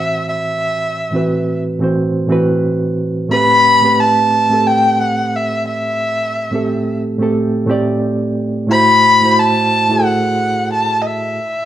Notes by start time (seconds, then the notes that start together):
Already playing: A2 E3 C4 F#4 C5 E5
0.29 E5
1.11 A2 E3 C4 F#4
1.16 B4
1.79 A2 E3 C4 F#4
1.84 C5
2.27 A2 E3 C4 F#4
2.32 B4
3.28 A2 A3 C4 G4 B5
3.33 B4
3.81 A2 A3 C4 G4
3.86 B4
3.99 A5
4.49 A2 A3 C4 G4
4.54 A4
4.67 G5
5.01 F#5
5.35 E5
5.68 E5
6.51 A2 A3 C4 G4
6.55 A4
7.18 A2 A3 C4 G4
7.23 A4
7.66 A2 A3 C4 G4
7.71 D5
8.67 A2 A3 E4 F#4 B5
8.72 C5
9.21 A2 A3 E4 F#4
9.25 C5
9.38 A5
9.88 A2 A3 E4 F#4
9.92 G#4
9.99 A4
10.05 F#5
10.73 A5
11.02 D#5
11.07 E5